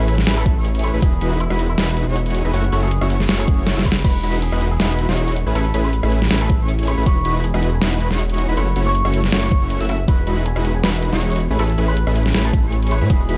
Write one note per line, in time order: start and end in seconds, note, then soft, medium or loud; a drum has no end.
0.00 0.25 A1 loud
0.00 0.15 A3 medium
0.00 0.15 C#4 medium
0.00 0.15 E4 medium
0.00 0.15 G#4 medium
0.00 0.15 B4 medium
0.00 0.15 B5 medium
0.08 closed hi-hat medium
0.18 snare soft
0.27 0.54 A1 loud
0.27 0.54 A3 medium
0.27 0.54 C#4 medium
0.27 0.54 E4 medium
0.27 0.54 G#4 medium
0.27 0.54 B4 loud
0.27 0.54 B5 loud
0.27 snare loud
0.27 closed hi-hat medium
0.37 0.57 A4 medium
0.46 kick loud
0.46 closed hi-hat medium
0.56 0.92 A1 loud
0.56 0.91 A3 medium
0.56 0.91 C#4 medium
0.56 0.91 E4 medium
0.56 0.91 G#4 medium
0.56 0.91 C#5 loud
0.56 0.91 C#6 loud
0.65 closed hi-hat medium
0.75 closed hi-hat soft
0.79 closed hi-hat medium
0.84 0.97 B4 medium
0.84 closed hi-hat medium
0.94 1.01 A1 loud
0.94 1.00 A3 medium
0.94 1.00 C#4 medium
0.94 1.00 E4 medium
0.94 1.00 G#4 medium
0.94 1.00 B4 medium
0.94 1.00 B5 medium
1.02 1.20 E1 loud
1.02 1.13 G#3 loud
1.02 1.13 D#4 medium
1.02 1.13 E4 medium
1.02 1.13 F#4 medium
1.02 1.29 G#4 loud
1.02 1.13 B4 loud
1.02 1.13 B5 loud
1.02 kick loud
1.02 closed hi-hat medium
1.21 1.48 E1 medium
1.21 1.37 G#3 loud
1.21 1.37 D#4 medium
1.21 1.37 E4 medium
1.21 1.37 F#4 medium
1.21 1.37 B4 loud
1.21 1.38 B5 loud
1.21 closed hi-hat medium
1.40 1.60 E4 medium
1.40 closed hi-hat medium
1.50 1.76 E1 loud
1.50 1.66 G#3 medium
1.50 1.66 D#4 medium
1.50 1.66 E4 medium
1.50 1.66 F#4 medium
1.50 1.66 B4 medium
1.50 1.66 B5 medium
1.50 cross-stick medium
1.59 closed hi-hat medium
1.69 1.89 E4 medium
1.78 2.05 E1 loud
1.78 2.05 G#3 loud
1.78 2.05 D#4 medium
1.78 2.05 E4 medium
1.78 2.05 F#4 medium
1.78 2.05 B4 loud
1.78 2.05 B5 loud
1.78 snare loud
1.78 closed hi-hat medium
1.97 closed hi-hat medium
2.07 2.43 E1 loud
2.07 2.42 G#3 medium
2.07 2.42 D#4 medium
2.07 2.42 E4 medium
2.07 2.42 F#4 medium
2.07 2.42 C#5 loud
2.07 2.42 C#6 loud
2.16 closed hi-hat medium
2.26 closed hi-hat soft
2.30 closed hi-hat medium
2.35 closed hi-hat medium
2.45 2.52 E1 loud
2.45 2.51 G#3 medium
2.45 2.51 D#4 medium
2.45 2.51 E4 medium
2.45 2.51 F#4 medium
2.45 2.51 B4 medium
2.45 2.51 B5 loud
2.53 2.71 F#1 medium
2.53 2.64 A3 loud
2.53 2.64 C#4 loud
2.53 2.64 E4 loud
2.53 2.73 F#4 loud
2.53 2.64 F#4 medium
2.53 2.64 C#5 loud
2.53 2.64 C#6 loud
2.53 closed hi-hat medium
2.72 2.99 F#1 loud
2.72 2.89 A3 loud
2.72 2.89 C#4 medium
2.72 2.89 E4 medium
2.72 2.89 F#4 medium
2.72 2.89 C#5 loud
2.72 2.89 C#6 loud
2.72 closed hi-hat medium
2.83 3.02 G#4 medium
2.91 closed hi-hat medium
3.01 3.27 F#1 loud
3.01 3.17 A3 medium
3.01 3.17 C#4 medium
3.01 3.17 E4 medium
3.01 3.17 F#4 medium
3.01 3.17 C#5 medium
3.01 3.17 C#6 medium
3.01 cross-stick medium
3.10 closed hi-hat medium
3.20 snare soft
3.29 3.56 F#1 loud
3.29 3.56 A3 medium
3.29 3.56 C#4 medium
3.29 3.56 E4 medium
3.29 3.56 F#4 medium
3.29 3.56 C#5 loud
3.29 3.56 C#6 loud
3.29 snare loud
3.29 closed hi-hat medium
3.39 3.59 G#4 medium
3.48 kick loud
3.48 closed hi-hat medium
3.58 3.75 F#1 loud
3.58 3.74 A3 medium
3.58 3.75 C#4 medium
3.58 3.75 E4 medium
3.58 3.74 F#4 medium
3.58 3.75 C#5 loud
3.58 3.74 C#6 loud
3.67 snare medium
3.67 closed hi-hat medium
3.77 4.03 F#1 loud
3.77 3.93 A3 medium
3.77 3.93 C#4 medium
3.77 3.93 E4 medium
3.77 3.93 F#4 medium
3.77 3.93 E5 medium
3.77 3.93 E6 medium
3.77 snare medium
3.77 closed hi-hat medium
3.81 closed hi-hat medium
3.86 3.99 B4 medium
3.86 kick medium
3.86 closed hi-hat medium
3.92 snare loud
4.04 4.22 E1 loud
4.04 4.15 G#3 loud
4.04 4.15 D#4 medium
4.04 4.15 E4 medium
4.04 4.15 F#4 medium
4.04 4.31 B4 loud
4.04 4.15 B4 loud
4.04 4.15 B5 loud
4.04 kick loud
4.04 closed hi-hat medium
4.04 ride medium
4.04 crash loud
4.23 4.50 E1 loud
4.23 4.40 G#3 loud
4.23 4.39 D#4 medium
4.23 4.40 E4 medium
4.23 4.39 F#4 medium
4.23 4.39 B4 loud
4.23 4.39 B5 loud
4.23 closed hi-hat medium
4.42 4.62 G#4 medium
4.42 closed hi-hat medium
4.52 4.78 E1 loud
4.52 4.68 G#3 medium
4.52 4.68 D#4 medium
4.52 4.68 E4 medium
4.52 4.68 F#4 medium
4.52 4.68 B4 medium
4.52 4.68 B5 medium
4.52 cross-stick medium
4.61 closed hi-hat medium
4.71 4.91 G#4 medium
4.80 5.07 G#3 medium
4.80 5.07 D#4 medium
4.80 5.07 E4 medium
4.80 5.07 F#4 medium
4.80 5.07 B4 loud
4.80 5.07 B5 loud
4.80 snare loud
4.80 closed hi-hat medium
4.99 closed hi-hat medium
5.09 5.45 E1 loud
5.09 5.35 G#3 loud
5.09 5.35 D#4 medium
5.09 5.35 E4 medium
5.09 5.35 F#4 medium
5.09 5.35 C#5 loud
5.09 5.35 C#6 loud
5.09 snare soft
5.17 closed hi-hat medium
5.28 closed hi-hat medium
5.32 closed hi-hat medium
5.36 closed hi-hat medium
5.47 5.54 A1 loud
5.47 5.53 A3 medium
5.47 5.53 C#4 medium
5.47 5.53 E4 medium
5.47 5.53 G#4 medium
5.47 5.53 B4 medium
5.47 5.53 B5 medium
5.55 5.72 A1 loud
5.55 5.66 A3 loud
5.55 5.66 C#4 medium
5.55 5.66 E4 medium
5.55 5.66 G#4 medium
5.55 5.75 A4 loud
5.55 5.66 B4 loud
5.55 5.66 B5 loud
5.55 closed hi-hat medium
5.55 ride soft
5.74 6.01 A1 loud
5.74 5.90 A3 loud
5.74 5.90 C#4 medium
5.74 5.90 E4 medium
5.74 5.90 G#4 medium
5.74 5.90 B4 loud
5.74 5.90 B5 loud
5.74 closed hi-hat medium
5.84 6.04 B4 medium
5.93 closed hi-hat medium
6.03 6.29 A1 loud
6.03 6.19 A3 medium
6.03 6.19 C#4 medium
6.03 6.19 E4 medium
6.03 6.19 G#4 medium
6.03 6.19 B4 medium
6.03 6.19 B5 medium
6.03 cross-stick medium
6.12 closed hi-hat medium
6.22 snare soft
6.31 6.58 A1 loud
6.31 6.58 A3 loud
6.31 6.57 C#4 medium
6.31 6.57 E4 medium
6.31 6.57 G#4 medium
6.31 6.57 B4 loud
6.31 6.57 B5 loud
6.31 snare loud
6.31 closed hi-hat medium
6.41 6.61 A4 medium
6.50 kick loud
6.50 closed hi-hat medium
6.60 6.96 A1 loud
6.60 6.95 A3 medium
6.60 6.95 C#4 medium
6.60 6.95 E4 medium
6.60 6.95 G#4 medium
6.60 6.95 C#5 loud
6.60 6.95 C#6 loud
6.68 closed hi-hat medium
6.79 closed hi-hat medium
6.83 closed hi-hat medium
6.87 7.01 B4 medium
6.87 closed hi-hat medium
6.98 7.08 A1 loud
6.98 7.04 A3 medium
6.98 7.04 C#4 medium
6.98 7.04 E4 medium
6.98 7.04 G#4 medium
6.98 7.04 B4 medium
6.98 7.04 B5 loud
7.06 7.23 E1 loud
7.06 7.17 G#3 loud
7.06 7.17 D#4 medium
7.06 7.17 E4 medium
7.06 7.17 F#4 loud
7.06 7.17 B4 loud
7.06 7.33 C#5 loud
7.06 7.17 B5 loud
7.06 kick loud
7.06 closed hi-hat medium
7.06 ride soft
7.25 7.52 E1 loud
7.25 7.41 G#3 loud
7.25 7.41 D#4 medium
7.25 7.41 E4 medium
7.25 7.41 F#4 medium
7.25 7.41 B4 loud
7.25 7.41 B5 loud
7.25 closed hi-hat medium
7.44 7.64 G#4 medium
7.44 closed hi-hat medium
7.54 7.80 E1 loud
7.54 7.70 G#3 medium
7.54 7.70 D#4 medium
7.54 7.70 E4 medium
7.54 7.70 F#4 medium
7.54 7.70 B4 medium
7.54 7.70 B5 medium
7.54 cross-stick medium
7.63 closed hi-hat medium
7.73 7.93 G#4 medium
7.82 8.09 E1 loud
7.82 8.08 G#3 loud
7.82 8.08 D#4 medium
7.82 8.08 E4 medium
7.82 8.08 F#4 medium
7.82 8.08 B4 loud
7.82 8.08 B5 loud
7.82 snare loud
7.82 closed hi-hat medium
8.00 closed hi-hat medium
8.11 8.47 E1 loud
8.11 8.46 G#3 medium
8.11 8.46 D#4 medium
8.11 8.46 E4 medium
8.11 8.46 F#4 medium
8.11 8.46 C#5 loud
8.11 8.46 C#6 loud
8.11 snare soft
8.19 closed hi-hat medium
8.30 closed hi-hat medium
8.34 closed hi-hat medium
8.38 closed hi-hat medium
8.48 8.55 E1 loud
8.48 8.55 G#3 medium
8.48 8.55 D#4 medium
8.48 8.55 E4 medium
8.48 8.55 F#4 medium
8.48 8.55 B4 medium
8.48 8.55 B5 loud
8.57 8.74 F#1 loud
8.57 8.68 A3 loud
8.57 8.68 C#4 medium
8.57 8.68 E4 loud
8.57 8.68 F#4 loud
8.57 8.77 B4 loud
8.57 8.68 C#5 loud
8.57 8.68 C#6 loud
8.57 closed hi-hat medium
8.57 ride soft
8.76 9.03 F#1 loud
8.76 8.92 A3 loud
8.76 8.92 C#4 medium
8.76 8.92 E4 medium
8.76 8.92 F#4 medium
8.76 8.92 C#5 loud
8.76 8.92 C#6 loud
8.76 closed hi-hat medium
8.86 9.06 C#5 medium
8.95 closed hi-hat medium
9.05 9.31 F#1 loud
9.05 9.21 A3 medium
9.05 9.21 C#4 medium
9.05 9.21 E4 medium
9.05 9.21 F#4 medium
9.05 9.21 C#5 medium
9.05 9.21 C#6 medium
9.05 cross-stick medium
9.14 closed hi-hat medium
9.24 snare soft
9.32 9.60 F#1 loud
9.32 9.59 A3 loud
9.32 9.59 C#4 medium
9.32 9.59 E4 medium
9.32 9.59 F#4 medium
9.32 9.59 C#5 loud
9.32 9.59 C#6 loud
9.32 snare loud
9.32 closed hi-hat medium
9.43 9.62 C#5 medium
9.51 kick loud
9.51 closed hi-hat medium
9.62 9.79 F#1 loud
9.62 9.78 A3 loud
9.62 9.78 C#4 medium
9.62 9.78 E4 medium
9.62 9.78 F#4 medium
9.62 9.78 C#5 loud
9.62 9.78 C#6 loud
9.70 closed hi-hat medium
9.80 10.06 F#1 loud
9.80 9.96 A3 medium
9.80 9.96 C#4 medium
9.80 9.96 E4 medium
9.80 9.96 F#4 medium
9.80 9.96 E5 medium
9.80 9.96 E6 medium
9.80 closed hi-hat medium
9.85 closed hi-hat medium
9.89 10.03 E5 medium
9.89 closed hi-hat medium
10.08 10.19 G#3 loud
10.08 10.19 D#4 medium
10.08 10.19 E4 loud
10.08 10.19 F#4 medium
10.08 10.35 B4 loud
10.08 10.19 B4 loud
10.08 10.19 B5 loud
10.08 kick loud
10.08 closed hi-hat medium
10.08 ride medium
10.27 10.54 E1 loud
10.27 10.43 G#3 medium
10.27 10.43 D#4 medium
10.27 10.43 E4 medium
10.27 10.43 F#4 medium
10.27 10.43 B4 loud
10.27 10.43 B5 loud
10.27 closed hi-hat medium
10.46 10.65 G#4 medium
10.46 closed hi-hat medium
10.56 10.82 E1 loud
10.56 10.72 G#3 medium
10.56 10.72 D#4 medium
10.56 10.72 E4 medium
10.56 10.72 F#4 medium
10.56 10.72 B4 medium
10.56 10.72 B5 medium
10.56 cross-stick medium
10.65 closed hi-hat medium
10.75 10.94 G#4 loud
10.83 11.11 E1 loud
10.83 11.10 G#3 medium
10.83 11.10 D#4 medium
10.83 11.10 E4 medium
10.83 11.10 F#4 medium
10.83 11.10 B4 loud
10.83 11.10 B5 loud
10.83 snare loud
10.83 closed hi-hat medium
11.02 closed hi-hat medium
11.13 11.48 E1 medium
11.13 11.39 G#3 medium
11.13 11.39 D#4 medium
11.13 11.39 E4 medium
11.13 11.39 F#4 medium
11.13 11.39 C#5 loud
11.13 11.39 C#6 loud
11.13 snare soft
11.21 closed hi-hat medium
11.32 closed hi-hat soft
11.36 closed hi-hat medium
11.40 closed hi-hat medium
11.50 11.57 A1 loud
11.50 11.57 A3 medium
11.50 11.57 C#4 medium
11.50 11.57 E4 medium
11.50 11.57 G#4 medium
11.50 11.57 B4 medium
11.50 11.57 B5 medium
11.59 11.76 A1 loud
11.59 11.70 A3 loud
11.59 11.70 C#4 medium
11.59 11.70 E4 medium
11.59 11.70 G#4 medium
11.59 11.79 A4 loud
11.59 11.70 B4 loud
11.59 11.70 B5 loud
11.59 closed hi-hat medium
11.59 ride medium
11.78 12.05 A1 loud
11.78 11.94 A3 loud
11.78 11.94 C#4 medium
11.78 11.94 E4 medium
11.78 11.94 G#4 medium
11.78 11.94 B4 loud
11.78 11.94 B5 loud
11.78 closed hi-hat medium
11.88 12.08 B4 loud
11.97 closed hi-hat medium
12.07 12.33 A1 loud
12.07 12.23 A3 medium
12.07 12.23 C#4 medium
12.07 12.23 E4 medium
12.07 12.23 G#4 medium
12.07 12.23 B4 medium
12.07 12.23 B5 medium
12.07 cross-stick medium
12.16 closed hi-hat medium
12.26 snare soft
12.34 12.62 A1 loud
12.34 12.61 A3 medium
12.34 12.61 C#4 medium
12.34 12.61 E4 medium
12.34 12.61 G#4 medium
12.34 12.61 B4 loud
12.34 12.61 B5 loud
12.34 snare loud
12.34 closed hi-hat medium
12.45 12.64 A4 loud
12.53 kick loud
12.53 closed hi-hat medium
12.63 13.03 A1 medium
12.63 12.99 A3 loud
12.63 12.99 C#4 medium
12.63 12.99 E4 medium
12.63 12.99 G#4 medium
12.63 12.99 C#5 loud
12.63 12.99 C#6 loud
12.72 closed hi-hat medium
12.83 closed hi-hat soft
12.87 closed hi-hat medium
12.91 13.05 B4 medium
12.91 closed hi-hat medium
13.01 13.08 A2 loud
13.01 13.08 A3 medium
13.01 13.08 C#4 medium
13.01 13.08 E4 medium
13.01 13.08 G#4 medium
13.01 13.08 B4 medium
13.01 13.08 B5 medium
13.10 13.27 E1 loud
13.10 13.21 G#3 loud
13.10 13.21 D#4 medium
13.10 13.21 E4 loud
13.10 13.21 F#4 medium
13.10 13.37 G#4 loud
13.10 13.21 B4 loud
13.10 13.21 B5 loud
13.10 kick loud
13.10 closed hi-hat medium
13.10 ride medium
13.29 13.38 E1 loud
13.29 13.38 G#3 loud
13.29 13.38 D#4 medium
13.29 13.38 E4 medium
13.29 13.38 F#4 medium
13.29 13.38 B4 loud
13.29 13.38 B5 loud
13.29 closed hi-hat medium